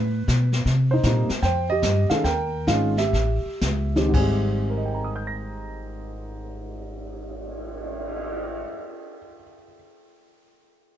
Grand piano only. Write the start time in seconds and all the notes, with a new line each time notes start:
Already playing: B4
0.91 D#4 C5
1.05 C3 G3 A#3 D#4
1.43 C5 G5
1.70 G4 D#5
2.10 D#3 G#3 C#4 G#4 A4 F5
2.24 A#4 G5
2.67 D#3 G#3 C#4 F4 G#4 F5
2.98 G4 E5
3.96 D#3 G#3 C4 G4
4.08 G#2
4.12 G#3 C4 G#5
4.20 G3
4.70 A#4
4.78 D#5
4.85 G5
4.94 A#5
5.04 D#6
5.16 G6
5.27 A#6